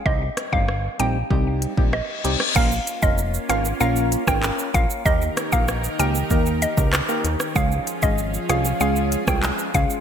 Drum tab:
CC |----------------|x---------------|----------------|----------------|
HH |--x---x---x---x-|--x---x---x---x-|--x---x---x---x-|--x---x---x---x-|
SH |----------------|xxxxxxxxxxxxxxxx|xxxxxxxxxxxxxxxx|xxxxxxxxxxxxxxxx|
CP |----------------|------------x---|------------x---|------------x---|
SD |--r-r-------r--r|------r----r----|--r-r-------r--r|------r----r----|
BD |o--o----o--o----|o--o-------o--o-|o--o----o--o----|o--o-------o--o-|